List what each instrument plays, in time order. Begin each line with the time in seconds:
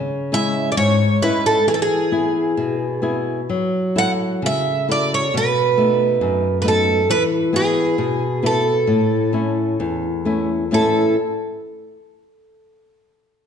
Already playing: nylon-string guitar C#3
0.32 nylon-string guitar G#3 C#4 E4, twelve-string acoustic guitar E5
0.72 twelve-string acoustic guitar D5
0.77 nylon-string guitar G#2, twelve-string acoustic guitar C#5
1.22 nylon-string guitar G#3 C#4 E4, twelve-string acoustic guitar B4
1.46 twelve-string acoustic guitar A4
1.67 nylon-string guitar E3, twelve-string acoustic guitar G#4
1.74 twelve-string acoustic guitar A4
1.82 twelve-string acoustic guitar G#4
2.12 nylon-string guitar B3 E4 G#4
2.57 nylon-string guitar B2
3.02 nylon-string guitar B3 E4 G#4
3.50 nylon-string guitar F#3
3.96 nylon-string guitar E4 F#4 A4, twelve-string acoustic guitar F#5
4.42 nylon-string guitar C#3, twelve-string acoustic guitar E5
4.89 nylon-string guitar E4 F#4 A4, twelve-string acoustic guitar D5
5.14 twelve-string acoustic guitar C#5
5.34 nylon-string guitar B2, twelve-string acoustic guitar B4
5.77 nylon-string guitar A3 B3 D#4
6.21 nylon-string guitar F#2
6.62 nylon-string guitar A3 B3 D#4, twelve-string acoustic guitar B4
6.68 twelve-string acoustic guitar A4
7.10 nylon-string guitar E3, twelve-string acoustic guitar B4
7.53 nylon-string guitar B3 E4 G#4, twelve-string acoustic guitar G#4
7.98 nylon-string guitar B2
8.43 nylon-string guitar B3 E4 B4, twelve-string acoustic guitar A4
8.87 nylon-string guitar A2
9.33 nylon-string guitar A3 C#4 E4
9.80 nylon-string guitar E2
10.25 nylon-string guitar A3 C#4 E4
10.71 nylon-string guitar A2 E3 A3 C#4 E4, twelve-string acoustic guitar A4